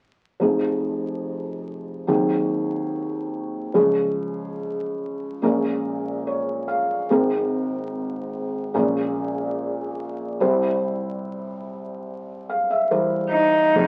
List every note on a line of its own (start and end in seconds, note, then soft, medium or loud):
0.40 2.05 F1 soft
0.40 2.04 F2 soft
0.40 2.05 F3 soft
0.40 2.05 D#4 soft
0.40 2.06 G#4 soft
2.07 3.71 D#2 soft
2.07 3.71 D#3 soft
2.07 3.71 F#3 soft
2.07 3.72 C4 soft
2.07 3.72 G#4 medium
3.74 5.38 C#2 soft
3.74 5.38 C#3 soft
3.74 5.38 F3 soft
3.74 5.39 C#4 soft
3.74 5.39 G#4 medium
5.42 7.05 A#1 soft
5.42 7.05 A#2 soft
5.42 7.05 G#3 medium
5.42 7.06 C#4 soft
5.42 7.06 A#4 medium
6.27 6.65 C#5 soft
6.68 7.06 F5 soft
7.10 8.72 G#1 soft
7.10 8.72 G#2 soft
7.10 8.72 G#3 medium
7.10 8.73 C4 soft
7.10 8.73 A#4 medium
8.74 10.37 A#1 soft
8.74 10.37 A#2 soft
8.74 10.37 G#3 medium
8.74 10.38 C#4 soft
8.74 10.38 A#4 medium
10.40 13.71 C2 soft
10.40 13.72 C3 soft
10.40 12.87 G3 soft
10.40 12.88 E4 soft
10.40 12.88 C5 medium
12.49 12.69 F5 soft
12.71 12.90 E5 soft
12.91 13.75 E3 soft
12.91 13.75 G3 soft
12.91 13.75 A#4 soft
12.91 13.71 C5 soft
13.31 13.87 D#4 medium
13.75 13.87 F1 medium
13.75 13.87 F1 soft
13.75 13.87 F2 soft
13.75 13.87 F3 medium
13.75 13.87 D#4 soft
13.75 13.87 G#4 medium